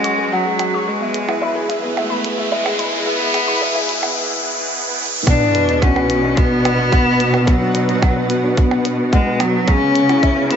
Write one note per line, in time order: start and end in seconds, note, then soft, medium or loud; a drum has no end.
0.00 0.82 F#3 medium
0.00 0.34 G#3 loud
0.00 0.45 G#3 loud
0.00 0.89 C#4 medium
0.00 0.18 F#4 medium
0.00 0.83 F#4 medium
0.00 0.04 G#4 loud
0.00 0.82 G#4 medium
0.00 5.23 B4 medium
0.00 0.32 F#5 loud
0.00 0.17 C#6 loud
0.00 riser medium
0.04 0.17 G#4 medium
0.04 closed hi-hat medium
0.18 0.26 F#4 medium
0.18 0.31 G#4 medium
0.32 0.89 F#3 loud
0.32 0.40 F#5 loud
0.32 0.42 F#5 loud
0.45 0.58 G#3 medium
0.59 0.72 F#4 medium
0.59 0.69 F#5 loud
0.59 closed hi-hat medium
0.59 percussion blips medium
0.73 0.85 G#3 medium
0.73 0.87 C#6 loud
0.86 5.23 E3 medium
0.86 1.00 G#3 medium
0.86 1.70 G#3 loud
0.86 5.23 E4 medium
0.86 5.23 G#4 medium
0.86 1.00 G#4 medium
1.00 1.08 B3 medium
1.00 1.10 E5 medium
1.14 1.27 G#4 medium
1.14 closed hi-hat medium
1.28 1.36 E4 medium
1.28 1.38 E5 loud
1.28 percussion blips medium
1.42 1.49 E5 medium
1.42 1.55 B5 loud
1.55 1.68 G#4 loud
1.55 1.68 G#4 medium
1.69 1.82 E4 medium
1.69 1.79 E5 loud
1.69 closed hi-hat medium
1.83 1.91 B3 medium
1.96 2.10 G#3 medium
1.96 2.54 A3 loud
1.96 2.06 E5 loud
1.96 percussion blips medium
2.10 2.18 B3 medium
2.10 2.23 B5 loud
2.24 2.37 G#4 medium
2.24 closed hi-hat medium
2.38 2.46 E4 medium
2.38 2.47 E5 loud
2.52 3.08 G#3 loud
2.52 2.59 E5 loud
2.65 2.78 G#3 loud
2.65 2.75 E5 loud
2.65 percussion blips medium
2.79 2.92 E4 medium
2.79 2.92 B5 medium
2.79 closed hi-hat medium
2.93 3.05 G#3 medium
2.93 3.06 G#4 medium
3.06 3.19 G#3 medium
3.06 3.89 B3 loud
3.06 3.16 E5 loud
3.20 3.28 B3 medium
3.34 3.47 G#4 medium
3.34 3.43 E5 loud
3.34 closed hi-hat medium
3.34 percussion blips medium
3.48 3.56 E4 medium
3.48 3.61 B5 loud
3.61 3.74 G#4 medium
3.61 3.70 E5 medium
3.75 3.89 G#4 loud
3.75 3.85 E5 loud
3.89 4.03 E4 medium
3.89 closed hi-hat medium
4.02 4.11 B3 medium
4.02 4.12 E5 medium
4.02 percussion blips medium
4.16 swell medium
5.27 9.64 B2 loud
5.27 5.40 B3 medium
5.27 9.63 B3 medium
5.27 5.84 D4 loud
5.27 9.63 B4 medium
5.27 9.63 F#5 medium
5.27 kick loud
5.27 closed hi-hat soft
5.27 sub drop medium
5.27 percussion blips medium
5.41 5.49 D4 medium
5.55 5.68 B4 medium
5.55 closed hi-hat medium
5.68 5.76 F#4 medium
5.68 closed hi-hat soft
5.82 6.39 C#4 loud
5.82 5.90 F#5 medium
5.82 kick loud
5.82 closed hi-hat soft
5.96 6.09 B4 loud
5.96 percussion blips medium
6.10 6.23 F#4 medium
6.10 closed hi-hat medium
6.24 6.31 D4 medium
6.37 6.50 B3 medium
6.37 7.50 B3 loud
6.37 kick loud
6.37 closed hi-hat soft
6.51 6.59 D4 medium
6.65 6.78 B4 medium
6.65 closed hi-hat medium
6.65 percussion blips medium
6.78 6.86 F#4 medium
6.92 7.00 F#5 medium
6.92 kick loud
6.92 closed hi-hat soft
7.06 7.19 B3 medium
7.20 7.33 F#4 medium
7.20 closed hi-hat medium
7.33 7.45 B3 medium
7.33 percussion blips medium
7.47 8.58 F#3 medium
7.47 7.60 B3 medium
7.47 kick loud
7.47 closed hi-hat soft
7.61 7.68 D4 medium
7.74 7.88 B4 medium
7.74 closed hi-hat medium
7.88 7.96 F#4 medium
7.88 closed hi-hat soft
8.02 8.10 F#5 medium
8.02 kick loud
8.02 closed hi-hat soft
8.02 percussion blips medium
8.16 8.29 B4 loud
8.30 8.43 F#4 medium
8.30 closed hi-hat medium
8.44 8.51 D4 medium
8.57 8.70 B3 medium
8.57 kick loud
8.57 closed hi-hat soft
8.71 8.79 D4 medium
8.71 percussion blips medium
8.85 8.98 B4 medium
8.85 closed hi-hat medium
8.99 9.07 F#4 medium
9.13 9.42 G#3 loud
9.13 9.20 F#5 loud
9.13 kick loud
9.13 closed hi-hat soft
9.27 9.39 B3 loud
9.40 9.69 F#3 loud
9.40 9.53 F#4 medium
9.40 closed hi-hat medium
9.40 percussion blips medium
9.54 9.67 B3 medium
9.67 10.56 C#3 medium
9.67 9.81 G#3 medium
9.67 10.56 C#4 medium
9.67 10.53 C#4 loud
9.67 10.56 C#5 medium
9.67 10.56 E5 medium
9.67 10.56 G#5 medium
9.67 kick loud
9.67 closed hi-hat soft
9.82 9.89 C#4 medium
9.96 10.08 G#4 medium
9.96 closed hi-hat medium
10.09 10.17 E4 medium
10.09 closed hi-hat soft
10.09 percussion blips medium
10.23 10.30 E5 medium
10.23 kick loud
10.23 closed hi-hat soft
10.37 10.49 G#4 loud
10.51 10.56 B3 loud
10.51 10.56 E4 medium
10.51 closed hi-hat medium